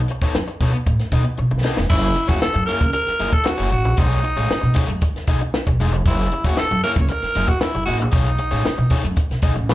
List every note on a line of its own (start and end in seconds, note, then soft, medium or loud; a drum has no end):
0.08 muted overdriven electric guitar stroke soft
0.08 closed hi-hat medium
0.21 0.34 B3 medium
0.21 0.34 D#4 soft
0.21 0.34 A4 medium
0.21 0.34 C#5 medium
0.21 muted upright bass stroke medium
0.21 kick medium
0.21 closed hi-hat medium
0.35 0.45 F#2 medium
0.35 snare loud
0.48 muted overdriven electric guitar stroke soft
0.48 closed hi-hat medium
0.60 0.71 B2 medium
0.60 0.76 B3 medium
0.60 0.73 D#4 medium
0.60 0.73 A4 loud
0.60 0.72 C#5 loud
0.60 kick medium
0.60 open hi-hat medium
0.74 muted overdriven electric guitar stroke soft
0.74 closed hi-hat soft
0.86 0.97 A2 loud
0.86 muted overdriven electric guitar stroke soft
0.86 kick loud
0.86 closed hi-hat loud
0.99 snare soft
0.99 closed hi-hat medium
1.12 1.23 B2 loud
1.12 1.24 B3 medium
1.12 1.24 D#4 medium
1.12 1.23 A4 medium
1.12 1.24 D#5 medium
1.12 kick loud
1.12 closed hi-hat medium
1.25 muted overdriven electric guitar stroke soft
1.25 closed hi-hat medium
1.38 1.50 B2 loud
1.38 muted overdriven electric guitar stroke soft
1.51 1.62 B1 medium
1.51 muted overdriven electric guitar stroke soft
1.63 1.79 B3 medium
1.63 1.77 D#4 medium
1.63 1.77 A4 medium
1.63 1.77 D#5 medium
1.63 snare medium
1.77 1.88 F1 loud
1.77 muted overdriven electric guitar stroke soft
1.77 snare loud
1.89 2.12 F#1 loud
1.89 2.05 A#3 medium
1.89 2.30 E4 loud
1.89 2.06 E4 medium
1.89 2.06 G#4 medium
1.89 2.06 C#5 medium
1.89 kick loud
1.89 crash loud
2.02 closed hi-hat medium
2.15 muted overdriven electric guitar stroke soft
2.15 closed hi-hat medium
2.28 2.40 E2 loud
2.28 2.41 A#3 medium
2.28 2.41 E4 medium
2.28 2.41 F#4 medium
2.28 2.41 G#4 medium
2.28 2.40 C#5 medium
2.28 kick medium
2.28 closed hi-hat medium
2.42 2.65 A4 loud
2.42 muted upright bass stroke soft
2.42 snare loud
2.54 2.66 F#2 loud
2.54 muted overdriven electric guitar stroke medium
2.54 closed hi-hat medium
2.66 2.83 A#3 loud
2.66 2.80 E4 loud
2.66 2.80 G#4 loud
2.66 2.91 A#4 loud
2.66 2.80 C#5 loud
2.66 open hi-hat medium
2.81 2.92 C#2 loud
2.81 muted overdriven electric guitar stroke soft
2.81 kick medium
2.81 closed hi-hat soft
2.93 3.34 A#4 loud
2.93 muted overdriven electric guitar stroke soft
2.93 closed hi-hat loud
3.07 muted upright bass stroke soft
3.07 snare soft
3.07 closed hi-hat medium
3.19 3.31 F#1 medium
3.19 3.32 A#3 medium
3.19 3.31 E4 medium
3.19 3.31 G#4 medium
3.19 3.31 D#5 medium
3.19 closed hi-hat medium
3.31 3.48 A4 loud
3.31 muted overdriven electric guitar stroke medium
3.31 kick loud
3.31 closed hi-hat medium
3.44 3.72 F#4 loud
3.44 muted overdriven electric guitar stroke medium
3.44 snare loud
3.58 3.70 F#1 medium
3.58 3.70 A#3 medium
3.58 3.71 E4 medium
3.58 3.71 G#4 medium
3.58 3.71 C#5 loud
3.58 closed hi-hat medium
3.71 3.84 A1 medium
3.71 4.00 F#4 medium
3.71 muted overdriven electric guitar stroke soft
3.71 closed hi-hat medium
3.84 3.95 A#1 medium
3.84 muted overdriven electric guitar stroke soft
3.84 closed hi-hat medium
3.98 4.19 B1 loud
3.98 4.18 A3 loud
3.98 4.18 D#4 medium
3.98 5.02 D#4 loud
3.98 4.18 G#4 loud
3.98 4.18 C#5 loud
3.98 kick loud
3.98 closed hi-hat medium
4.12 closed hi-hat medium
4.23 muted overdriven electric guitar stroke soft
4.23 closed hi-hat medium
4.36 4.47 A2 loud
4.36 4.49 A3 soft
4.36 4.49 D#4 medium
4.36 4.49 G#4 medium
4.36 4.49 C#5 medium
4.36 closed hi-hat medium
4.50 muted upright bass stroke soft
4.50 snare loud
4.61 4.74 B2 loud
4.61 muted overdriven electric guitar stroke soft
4.61 closed hi-hat medium
4.74 4.90 A3 loud
4.74 4.88 D#4 loud
4.74 4.88 G#4 loud
4.74 4.88 C#5 loud
4.74 kick loud
4.74 open hi-hat medium
4.88 4.99 F#2 loud
4.88 muted overdriven electric guitar stroke soft
4.88 closed hi-hat soft
5.02 muted overdriven electric guitar stroke soft
5.02 kick loud
5.02 closed hi-hat loud
5.14 muted upright bass stroke medium
5.14 snare soft
5.14 closed hi-hat medium
5.28 5.38 B1 loud
5.28 5.39 A3 medium
5.28 5.40 D#4 medium
5.28 5.40 G#4 medium
5.28 5.40 D#5 medium
5.28 kick loud
5.28 closed hi-hat medium
5.41 muted overdriven electric guitar stroke soft
5.41 closed hi-hat medium
5.54 snare loud
5.67 5.77 B1 medium
5.67 muted overdriven electric guitar stroke medium
5.67 kick loud
5.67 closed hi-hat medium
5.80 5.92 E1 loud
5.80 5.95 A3 medium
5.80 5.93 D#4 medium
5.80 5.93 G#4 medium
5.80 5.94 D#5 loud
5.80 closed hi-hat medium
5.92 6.03 F1 medium
5.92 muted overdriven electric guitar stroke soft
5.92 closed hi-hat medium
6.06 6.27 F#1 loud
6.06 6.26 A#3 loud
6.06 6.26 E4 loud
6.06 6.47 E4 medium
6.06 6.26 G#4 loud
6.06 6.26 C#5 loud
6.06 kick loud
6.06 closed hi-hat medium
6.19 closed hi-hat medium
6.31 muted overdriven electric guitar stroke soft
6.31 closed hi-hat medium
6.44 6.55 E2 medium
6.44 6.57 A#3 medium
6.44 6.57 E4 medium
6.44 6.60 F#4 loud
6.44 6.57 G#4 medium
6.44 6.57 C#5 medium
6.44 kick loud
6.44 closed hi-hat medium
6.57 6.83 A4 loud
6.57 muted upright bass stroke medium
6.57 snare loud
6.70 6.81 F#2 loud
6.70 muted overdriven electric guitar stroke soft
6.70 closed hi-hat medium
6.83 6.99 A#3 loud
6.83 6.97 E4 loud
6.83 6.97 G#4 medium
6.83 6.92 A#4 loud
6.83 6.97 C#5 loud
6.83 open hi-hat medium
6.96 7.07 C#2 loud
6.96 muted overdriven electric guitar stroke soft
6.96 kick loud
6.96 closed hi-hat medium
7.01 7.11 C#5 medium
7.08 7.50 A#4 loud
7.08 muted overdriven electric guitar stroke soft
7.08 closed hi-hat loud
7.22 muted upright bass stroke medium
7.22 snare soft
7.22 closed hi-hat medium
7.35 7.46 F#1 medium
7.35 7.47 A#3 medium
7.35 7.47 E4 medium
7.35 7.48 G#4 medium
7.35 7.48 D#5 medium
7.35 closed hi-hat medium
7.48 7.62 F#4 loud
7.48 muted overdriven electric guitar stroke soft
7.48 kick medium
7.48 closed hi-hat medium
7.60 7.85 E4 medium
7.60 snare loud
7.74 7.85 F#1 medium
7.74 muted overdriven electric guitar stroke soft
7.74 closed hi-hat medium
7.85 8.01 A1 medium
7.85 8.02 A#3 medium
7.85 8.00 E4 medium
7.85 7.97 F#4 medium
7.85 7.99 G#4 medium
7.85 8.00 D#5 medium
7.85 closed hi-hat medium
8.00 8.11 A#1 loud
8.00 muted overdriven electric guitar stroke soft
8.00 closed hi-hat medium
8.11 8.34 B1 loud
8.11 8.28 A3 medium
8.11 9.12 D#4 medium
8.11 8.28 D#4 medium
8.11 8.28 G#4 medium
8.11 8.28 C#5 loud
8.11 kick loud
8.11 closed hi-hat medium
8.26 closed hi-hat medium
8.38 muted overdriven electric guitar stroke soft
8.38 closed hi-hat medium
8.51 8.63 A2 medium
8.51 8.63 A3 medium
8.51 8.63 D#4 medium
8.51 8.63 G#4 medium
8.51 8.63 C#5 medium
8.51 closed hi-hat medium
8.65 muted upright bass stroke soft
8.65 snare loud
8.78 8.89 B2 loud
8.78 muted overdriven electric guitar stroke soft
8.78 closed hi-hat soft
8.91 9.06 A3 loud
8.91 9.03 D#4 loud
8.91 9.03 G#4 loud
8.91 9.03 C#5 loud
8.91 kick medium
8.91 open hi-hat medium
9.04 9.15 F#2 loud
9.04 muted overdriven electric guitar stroke soft
9.04 closed hi-hat soft
9.17 muted overdriven electric guitar stroke soft
9.17 kick loud
9.17 closed hi-hat loud
9.30 9.41 B1 medium
9.30 snare soft
9.30 closed hi-hat medium
9.42 9.53 B1 medium
9.42 9.54 A3 medium
9.42 9.55 D#4 medium
9.42 9.55 G#4 medium
9.42 9.55 D#5 medium
9.42 kick loud
9.42 closed hi-hat medium
9.56 9.69 A1 loud
9.56 muted overdriven electric guitar stroke medium
9.56 closed hi-hat medium
9.69 9.74 B1 medium
9.69 snare loud